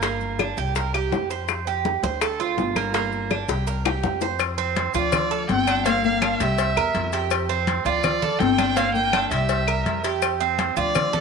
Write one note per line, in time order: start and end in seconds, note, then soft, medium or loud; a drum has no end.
0.00 0.52 G1 loud
0.00 0.38 A#3 medium
0.00 high bongo medium
0.00 high conga soft
0.00 maracas medium
0.21 high conga soft
0.21 maracas soft
0.39 0.57 D4 medium
0.39 high bongo medium
0.39 high conga medium
0.39 claves medium
0.39 maracas soft
0.57 1.08 C2 loud
0.57 0.75 G4 medium
0.57 high bongo soft
0.57 high conga soft
0.57 maracas medium
0.75 0.94 A#4 medium
0.75 high bongo medium
0.75 high conga soft
0.75 maracas medium
0.94 1.30 G4 medium
0.94 high bongo soft
0.94 high conga soft
0.94 claves medium
0.94 maracas soft
1.12 1.97 F2 loud
1.12 high bongo soft
1.12 low bongo medium
1.12 high conga medium
1.12 maracas soft
1.30 1.66 C5 medium
1.30 high bongo soft
1.30 maracas medium
1.48 high bongo medium
1.48 high conga soft
1.48 claves medium
1.48 maracas medium
1.67 2.02 G4 medium
1.67 high conga soft
1.67 maracas soft
1.85 high bongo medium
1.85 high conga medium
1.85 maracas soft
2.03 2.54 D2 loud
2.03 2.21 C5 medium
2.03 high bongo soft
2.03 high conga medium
2.03 maracas medium
2.21 2.39 A4 medium
2.21 high bongo medium
2.21 high conga soft
2.21 claves medium
2.21 maracas medium
2.40 2.75 F4 medium
2.40 high bongo soft
2.40 high conga soft
2.40 maracas soft
2.57 3.43 G1 medium
2.57 high bongo soft
2.57 low bongo medium
2.57 high conga medium
2.57 maracas soft
2.76 2.93 A#3 medium
2.76 high bongo soft
2.76 high conga medium
2.76 claves medium
2.76 maracas medium
2.94 3.30 A#3 medium
2.94 high bongo medium
2.94 high conga soft
2.94 maracas medium
3.12 high conga soft
3.12 maracas soft
3.30 3.48 D4 medium
3.30 high bongo medium
3.30 high conga medium
3.30 claves medium
3.30 maracas soft
3.48 4.00 C2 loud
3.48 3.67 G4 medium
3.48 high bongo medium
3.48 high conga soft
3.48 maracas medium
3.67 3.85 A#4 medium
3.67 high conga soft
3.67 maracas medium
3.85 4.21 G4 medium
3.85 low bongo loud
3.85 high conga soft
3.85 claves medium
3.85 maracas soft
4.03 4.89 F2 loud
4.03 low bongo medium
4.03 high conga medium
4.03 maracas soft
4.21 4.40 C5 medium
4.21 low bongo medium
4.21 maracas medium
4.39 cowbell loud
4.39 high conga soft
4.39 claves medium
4.39 maracas medium
4.58 4.93 C4 medium
4.58 high conga soft
4.58 maracas soft
4.76 cowbell medium
4.76 high conga medium
4.76 maracas soft
4.94 5.45 D2 loud
4.94 5.46 F3 medium
4.94 5.30 F4 medium
4.94 5.47 D5 medium
4.94 high conga soft
4.94 maracas medium
5.12 cowbell loud
5.12 high conga soft
5.12 low conga loud
5.12 claves medium
5.12 maracas medium
5.31 5.66 A4 medium
5.31 high conga soft
5.31 maracas soft
5.49 6.34 G1 loud
5.49 5.83 C4 medium
5.49 5.84 G5 loud
5.49 cowbell medium
5.49 high conga medium
5.49 maracas soft
5.67 5.85 D4 medium
5.67 cowbell medium
5.67 claves medium
5.67 maracas medium
5.85 6.21 A#3 medium
5.85 6.03 A#3 medium
5.85 6.03 F5 loud
5.85 cowbell loud
5.85 high conga soft
5.85 maracas medium
6.03 6.40 A#3 medium
6.03 6.43 F5 medium
6.03 high conga soft
6.03 maracas soft
6.22 6.40 D4 medium
6.22 cowbell medium
6.22 high conga medium
6.22 claves medium
6.22 maracas soft
6.40 6.74 C2 loud
6.40 7.13 G3 medium
6.40 6.76 G4 medium
6.40 7.14 E5 medium
6.40 cowbell medium
6.40 high conga soft
6.40 maracas medium
6.58 cowbell loud
6.58 high conga soft
6.58 maracas medium
6.76 6.94 E2 medium
6.76 7.12 A#4 medium
6.76 high conga soft
6.76 claves medium
6.76 maracas soft
6.94 7.80 F2 loud
6.94 cowbell medium
6.94 high conga medium
6.94 maracas soft
7.12 7.49 G4 medium
7.12 cowbell medium
7.12 maracas medium
7.31 cowbell loud
7.31 high conga soft
7.31 claves medium
7.31 maracas medium
7.49 7.85 C4 medium
7.49 high conga soft
7.49 maracas soft
7.67 cowbell medium
7.67 high conga medium
7.67 maracas soft
7.85 8.36 D2 loud
7.85 8.37 F3 medium
7.85 8.21 F4 medium
7.85 8.40 D5 medium
7.85 high conga soft
7.85 maracas medium
8.04 cowbell loud
8.04 high conga soft
8.04 low conga medium
8.04 claves medium
8.04 maracas loud
8.22 8.58 A4 medium
8.22 high conga soft
8.22 low conga medium
8.22 maracas soft
8.39 9.25 G1 loud
8.39 8.76 C4 medium
8.39 8.78 G5 loud
8.39 cowbell medium
8.39 high conga medium
8.39 maracas soft
8.58 8.76 D4 medium
8.58 cowbell medium
8.58 high conga medium
8.58 claves medium
8.58 maracas medium
8.76 8.92 A#3 medium
8.76 9.12 A#3 medium
8.76 8.94 F5 loud
8.76 cowbell loud
8.76 high conga soft
8.76 maracas medium
8.94 9.28 A#3 medium
8.94 9.29 G5 loud
8.94 high conga soft
8.94 maracas soft
9.13 9.31 D4 medium
9.13 cowbell medium
9.13 high conga loud
9.13 claves medium
9.13 maracas soft
9.31 9.82 C2 loud
9.31 10.00 G3 medium
9.31 9.67 G4 medium
9.31 10.00 E5 medium
9.31 cowbell medium
9.31 high conga soft
9.31 maracas medium
9.49 cowbell loud
9.49 high conga soft
9.49 maracas medium
9.68 10.03 A#4 medium
9.68 high conga soft
9.68 claves medium
9.68 maracas soft
9.85 10.71 F2 medium
9.85 cowbell medium
9.85 high conga medium
9.85 maracas soft
10.04 10.40 G4 medium
10.04 cowbell medium
10.04 maracas medium
10.22 cowbell medium
10.22 high conga soft
10.22 claves medium
10.22 maracas medium
10.40 10.76 C4 medium
10.40 high conga soft
10.40 maracas soft
10.59 cowbell medium
10.59 high conga loud
10.59 maracas soft
10.77 11.21 D2 loud
10.77 11.21 F3 medium
10.77 11.12 F4 medium
10.77 11.21 D5 medium
10.77 high conga soft
10.77 maracas medium
10.95 cowbell loud
10.95 high conga soft
10.95 low conga medium
10.95 claves medium
10.95 maracas medium
11.13 11.21 A4 medium
11.13 high conga soft
11.13 low conga medium
11.13 maracas soft